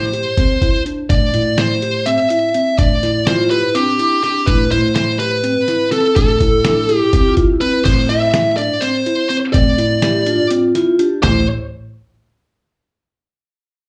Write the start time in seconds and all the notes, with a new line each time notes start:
Already playing: A2 C5
0.13 G4, closed hi-hat
0.37 C4, kick, snare, closed hi-hat
0.62 E4, kick, closed hi-hat
0.86 D4, closed hi-hat
1.10 A2 D4 D5, kick, closed hi-hat
1.34 A2 E4, closed hi-hat
1.58 E4 C5, snare, closed hi-hat
1.82 G4, closed hi-hat
2.06 C4 E5, closed hi-hat
2.30 E4, closed hi-hat
2.54 C4, closed hi-hat
2.78 A2 D4 D5, kick, closed hi-hat
3.03 E4, snare, closed hi-hat
3.27 E4 F4 C5, snare, closed hi-hat
3.50 E4 G4 B4, closed hi-hat
3.75 C4 D4 G4, closed hi-hat
3.99 E4, closed hi-hat
4.23 C4 D4 G4, closed hi-hat
4.46 A2 D4 E4 B4, kick, closed hi-hat
4.71 A2 E4 C5, closed hi-hat
4.95 E4 C5, snare, closed hi-hat
5.19 G4 B4, closed hi-hat
5.44 C4, closed hi-hat
5.68 E4, snare, closed hi-hat
5.92 C4 A4, snare, closed hi-hat
6.16 A2 D4 A4, kick, closed hi-hat
6.41 E4, kick, closed hi-hat
6.64 D4 E4, snare, closed hi-hat
6.81 E4
6.89 G4, closed hi-hat
6.96 G4
7.13 C4, kick, snare, closed hi-hat
7.28 F4
7.37 E4, kick, closed hi-hat
7.53 E4
7.61 C4 B4, closed hi-hat
7.85 A2 C4 C5, kick, closed hi-hat, crash
8.09 E4 E5, closed hi-hat
8.34 E4, snare, closed hi-hat
8.57 D4 D5, closed hi-hat
8.80 C4 C5, closed hi-hat
9.06 E4, closed hi-hat
9.29 C4 C5, closed hi-hat
9.53 A2 C4 D5, kick, closed hi-hat
9.78 E4, closed hi-hat
10.02 E4 G4, snare, closed hi-hat
10.26 D4 F4, closed hi-hat
10.51 C4, closed hi-hat
10.75 E4 F4, snare, closed hi-hat
10.99 D4 G4, closed hi-hat
11.23 A1 A3 E4 C5, snare, clap, floor tom